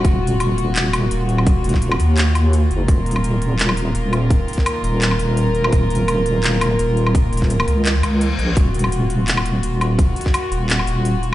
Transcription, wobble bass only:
X:1
M:4/4
L:1/8
Q:"Swing 16ths" 1/4=169
K:Ebm
V:1 name="Wobble bass" clef=bass
E,,,6 E,,,2- | E,,, E,,,2 E,,4 G,,, | E,,,6 E,,,2- | E,,, z2 E,,,2 E,,,3 |
E,,,6 E,,,2- | E,,, E,,,2 D,,2 D,,2 B,,, | E,,,6 E,,,2- | E,,, z2 E,,,2 E,,,3 |]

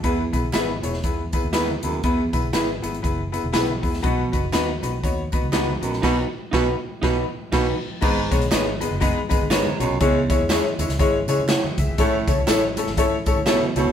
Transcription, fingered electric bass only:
X:1
M:4/4
L:1/16
Q:"Swing" 1/4=121
K:E
V:1 name="Fingered electric bass" clef=bass
E,,2 B,,,2 G,,,2 E,,,2 E,,3 D,,3 D,,2 | E,,2 B,,,2 G,,,2 G,,,2 F,,,3 E,,, B,,,2 E,,2 | B,,,2 F,,,2 D,,2 B,,,2 D,,3 C,,3 ^A,,,2 | B,,,2 z2 B,,,2 z2 B,,,2 z2 B,,,2 z2 |
G,,,2 B,,,2 G,,,3 F,,,2 z G,,, G,,,2 z B,,, =C,, | C,,3 E,,2 z D,, C,, G,,,2 C,3 z C,, G,,, | A,,,2 C,,2 A,,,3 G,,,2 z A,,, A,,,2 z C,, G,,, |]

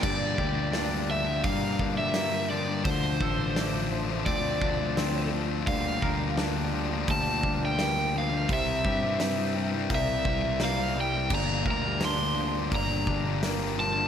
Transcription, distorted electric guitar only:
X:1
M:4/4
L:1/16
Q:1/4=85
K:Gdor
V:1 name="Distorted electric guitar"
[G,,D,G,B,D]2 [D,G,B,D] [G,B,D] [G,,D,G,B,D] [G,B,D] [D,G,B,D] [G,B,D]3 [D,G,B,D] [G,B,D] [G,,D,G,B,D]2 [D,G,B,D] [G,B,D] | [D,F,A,D]2 [D,F,A,D] [F,A,D] [D,F,A,D] [F,A,D] [D,F,A,D] [F,A,D]3 [D,F,A,D] [F,A,D] [D,F,A,D]2 [D,F,A,D] [F,A,D] | [D,G,B,D]2 [D,G,B,D] [G,B,D] [D,G,B,D] [G,B,D] [D,G,B,D] [G,B,D]3 [D,G,B,D] [G,B,D] [D,G,B,D]2 [D,G,B,D] [G,B,D] | [C,G,CE]2 [C,G,CE] [G,CE] [C,G,CE] [G,CE] [C,G,CE] [G,CE]3 [C,G,CE] [G,CE] [C,G,CE]2 [C,G,CE] [G,CE] |
[G,,D,G,B,D]2 [D,G,B,D] [G,B,D] [G,,D,G,B,D] [G,B,D] [D,G,B,D] [G,B,D]3 [D,G,B,D] [G,B,D] [G,,D,G,B,D]2 [D,G,B,D] [G,B,D] |]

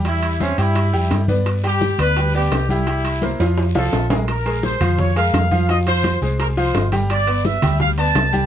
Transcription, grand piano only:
X:1
M:4/4
L:1/8
Q:1/4=170
K:Cphr
V:1 name="Grand piano"
[G,Gg]2 [Cc=e] [G,Gg]2 [G,Gg]2 [=B,=B=d]- | [=B,=B=d] [G,Gg]2 [B,Bd] [G,Gg] [B,Bd]2 [G,Gg] | [G,Gg]2 [B,Bc] [F,Ff]2 [F,Ff]2 [A,AB] | [K:Bbdor] z [A,AB]2 [F,Ff]2 [A,AB]2 [F,Ff] |
[F,Ff] [F,Ff]2 [A,Ac]2 [F,Ff]2 [G,Gg]- | [G,Gg] [=B,=B=d]2 [G,Gg]2 [B,Bd]2 [G,Gg] |]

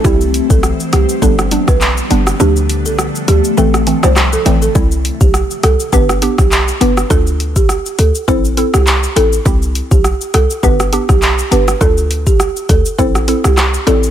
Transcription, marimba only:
X:1
M:4/4
L:1/16
Q:"Swing 16ths" 1/4=102
K:C
V:1 name="Marimba"
G z2 A z2 G z A z2 B z4 | G z2 A z2 G z A z2 c z A z A | z3 G z2 A z B z2 G z2 B z | A2 z G z2 A z c z2 G z2 A z |
z3 G z2 A z B z2 G z2 B z | A2 z G z2 A z c z2 G z2 A z |]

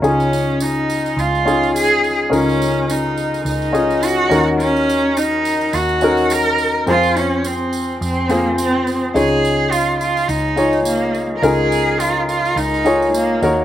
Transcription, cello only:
X:1
M:4/4
L:1/16
Q:"Swing 16ths" 1/4=105
K:Db
V:1 name="Cello"
D4 E4 F4 A3 z | D4 E4 E4 G3 z | D4 E4 G4 B3 z | F2 D2 C4 C2 B,2 C3 z |
A4 F2 F2 E4 B,3 z/2 B/2 | A4 F2 F2 E4 B,3 z |]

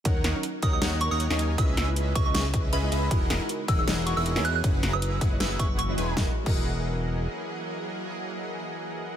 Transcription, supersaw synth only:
X:1
M:4/4
L:1/16
Q:"Swing 16ths" 1/4=157
K:Elyd
V:1 name="Supersaw synth"
[D,DAcf]2 [D,DAcf] z3 [D,DAcf] z [D,DAcf]3 [D,DAcf]2 [D,DAcg]3 | [CGBde]2 [CGBde]4 [CGBde] z [CGBde]4 [CGBde]2 [CGBde]2 | [E,EGAdf]2 [E,EGAdf] z3 [E,EGAdf] z [E,EGAdf]3 [E,EGAdf]2 [E,EGAdg]3 | [F,EGBf]2 [F,EGBa]4 [F,EGBf] z [F,EGBf]2 [F,EG]4 [F,EGBg]2 |
[E,EGAdf] z2 [E,EGAdf]12- [E,EGAdf]- | [E,EGAdf]16 |]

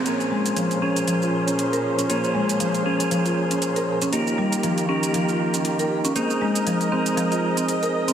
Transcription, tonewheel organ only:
X:1
M:4/4
L:1/8
Q:"Swing 16ths" 1/4=118
K:Bbdor
V:1 name="Tonewheel organ"
[DAB]3 [DAB]4- [DAB] | [DAB]3 [DAB]4- [DAB] | [EGB]3 [EGB]4- [EGB] | [CAB]3 [CAB]4- [CAB] |]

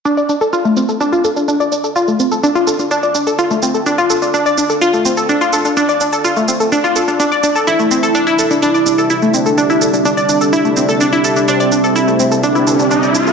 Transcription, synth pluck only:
X:1
M:4/4
L:1/16
Q:1/4=126
K:Dm
V:1 name="Synth pluck"
D d D A F A, C A D F A D D d D A | F A, C A D F A D D d D A F A, C A | D F A D D d D A F A, C A D F A D | D d D A F A, C A D F A D D d D A |
E A, C A D E A D D d D A E A, C A | D E A D D d D A E A, C A D E A D | D d D A E A, C A D E A D D d D A |]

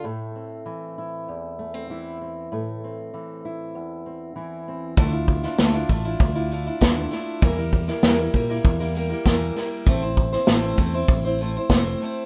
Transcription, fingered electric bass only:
X:1
M:4/4
L:1/8
Q:1/4=98
K:Dm
V:1 name="Fingered electric bass" clef=bass
z8 | z8 | D,,2 D,, A,,, D,,2 _E,, z | E,,2 E,, B,, E,,2 E,, z |
A,,,2 A,,, E,, A,,,2 F,,, z |]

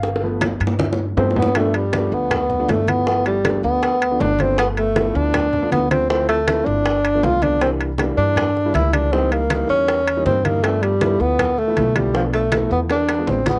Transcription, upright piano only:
X:1
M:4/4
L:1/16
Q:1/4=159
K:Gmix
V:1 name="Upright piano"
f2 [F,A,B,]2 z8 [F,A,B,]2 z2 | [F,A,B,D]3 z [F,A,B,D]4- [F,A,B,D] z2 [F,A,B,D]2 z [F,A,B,E] z | [F,A,B,E]3 z [F,A,B,D]4- [F,A,B,D] z2 [F,A,B,D]2 z [F,A,B,D] z | [F,A,B,F]3 z [F,A,B,E]4- [F,A,B,E] z2 [F,A,B,D]2 z [F,A,B,D] z |
[F,A,CE]3 z [F,A,CE]4 z3 [F,A,B,D]2 z [F,A,B,D] z | [E,G,_B,D]3 z [E,G,B,D]4- [E,G,B,D] z2 [E,G,B,E]2 z [E,G,B,D] z | [E,G,^A,_E]3 z [=E,G,A,_E]4- [=E,G,A,_E] z2 [=E,G,A,_E]2 z [=E,G,A,_E] z | [F,A,B,D]3 z [F,A,B,E]4- [F,A,B,E] z2 [F,A,B,E]2 z [F,A,B,E] z |
[F,A,B,D]3 z [F,A,B,E]4 z3 [F,^G,B,D]2 z [F,G,B,F] z |]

